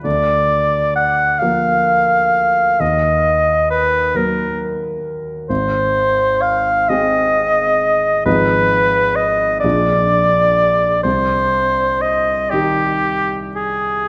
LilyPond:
<<
  \new Staff \with { instrumentName = "Oboe" } { \time 6/8 \key ees \minor \tempo 4. = 43 d''4 ges''8 f''4. | ees''4 ces''8 bes'8 r4 | \key c \minor c''4 f''8 ees''4. | ces''4 ees''8 d''4. |
c''4 ees''8 g'4 aes'8 | }
  \new Staff \with { instrumentName = "Grand piano" } { \time 6/8 \key ees \minor d,4. <f bes bes'>4. | ees,4. <ges bes bes'>4. | \key c \minor aes,,4. <aes c' aes'>4. | <aes,, f ees' aes'>4. <bes,, f d' aes'>4. |
c,4. <ees ees' g'>4. | }
>>